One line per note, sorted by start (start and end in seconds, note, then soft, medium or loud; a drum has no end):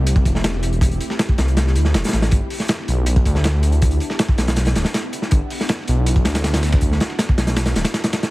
0.00 0.24 C2 medium
0.00 2.28 A3 medium
0.00 2.28 C4 medium
0.00 8.28 E4 medium
0.00 5.28 G4 medium
0.07 closed hi-hat medium
0.16 kick medium
0.16 closed hi-hat soft
0.25 0.99 E1 loud
0.25 kick medium
0.25 closed hi-hat medium
0.35 snare medium
0.44 snare loud
0.44 closed hi-hat medium
0.63 closed hi-hat medium
0.73 closed hi-hat soft
0.81 kick loud
0.81 closed hi-hat medium
0.91 closed hi-hat soft
1.01 closed hi-hat medium
1.10 snare medium
1.10 snare soft
1.19 snare loud
1.19 closed hi-hat medium
1.29 kick medium
1.38 1.77 C2 medium
1.38 snare loud
1.38 closed hi-hat medium
1.48 closed hi-hat soft
1.57 snare loud
1.57 closed hi-hat medium
1.67 snare soft
1.76 1.96 D2 loud
1.76 closed hi-hat medium
1.85 snare soft
1.94 2.03 E1 loud
1.94 snare loud
1.94 closed hi-hat medium
2.04 snare medium
2.04 closed hi-hat medium
2.08 snare loud
2.08 closed hi-hat medium
2.13 2.30 A1 loud
2.13 snare loud
2.13 closed hi-hat medium
2.22 snare loud
2.22 closed hi-hat medium
2.31 2.41 G1 loud
2.31 8.28 B3 medium
2.31 8.28 D4 medium
2.31 kick loud
2.31 closed hi-hat loud
2.31 closed hi-hat medium
2.50 snare soft
2.50 closed hi-hat medium
2.50 open hi-hat medium
2.60 snare soft
2.68 snare loud
2.68 closed hi-hat medium
2.79 snare medium
2.88 3.24 B1 medium
2.88 closed hi-hat medium
3.06 closed hi-hat medium
3.16 kick loud
3.16 closed hi-hat soft
3.25 3.99 D2 loud
3.25 kick medium
3.25 closed hi-hat medium
3.35 snare medium
3.44 snare loud
3.44 closed hi-hat medium
3.63 closed hi-hat medium
3.72 closed hi-hat soft
3.82 kick loud
3.82 closed hi-hat medium
3.91 closed hi-hat soft
4.00 closed hi-hat medium
4.10 snare medium
4.10 snare soft
4.19 snare loud
4.19 closed hi-hat medium
4.29 kick loud
4.38 4.74 B1 medium
4.38 snare loud
4.38 closed hi-hat medium
4.48 snare loud
4.48 closed hi-hat medium
4.56 snare loud
4.56 closed hi-hat medium
4.65 snare medium
4.65 closed hi-hat medium
4.75 4.84 D1 medium
4.75 snare loud
4.75 closed hi-hat medium
4.85 snare loud
4.85 closed hi-hat medium
4.94 snare loud
4.94 closed hi-hat medium
5.13 closed hi-hat medium
5.22 snare soft
5.31 5.40 G1 loud
5.31 8.29 F#4 medium
5.31 kick loud
5.31 closed hi-hat medium
5.50 snare soft
5.50 closed hi-hat medium
5.50 open hi-hat medium
5.60 snare soft
5.69 snare loud
5.69 closed hi-hat medium
5.79 snare soft
5.88 6.24 B1 medium
5.88 closed hi-hat medium
6.06 closed hi-hat medium
6.16 kick medium
6.16 closed hi-hat soft
6.25 6.99 D2 loud
6.25 snare loud
6.25 closed hi-hat medium
6.35 snare loud
6.35 closed hi-hat medium
6.44 snare loud
6.44 closed hi-hat medium
6.54 snare loud
6.54 closed hi-hat medium
6.63 snare loud
6.63 closed hi-hat medium
6.72 kick medium
6.72 snare loud
6.72 closed hi-hat medium
6.81 kick medium
6.81 closed hi-hat medium
6.92 snare soft
7.00 snare loud
7.00 closed hi-hat medium
7.10 snare medium
7.19 snare loud
7.19 closed hi-hat medium
7.29 kick medium
7.38 7.74 B1 medium
7.38 snare loud
7.38 closed hi-hat medium
7.47 snare loud
7.47 closed hi-hat medium
7.56 snare loud
7.56 closed hi-hat medium
7.66 snare loud
7.66 snare soft
7.66 closed hi-hat medium
7.75 7.84 D1 medium
7.75 snare loud
7.75 closed hi-hat medium
7.84 snare loud
7.84 closed hi-hat medium
7.94 snare loud
7.94 closed hi-hat medium
8.04 snare loud
8.04 closed hi-hat medium
8.13 snare loud
8.13 closed hi-hat medium
8.23 snare loud
8.23 closed hi-hat medium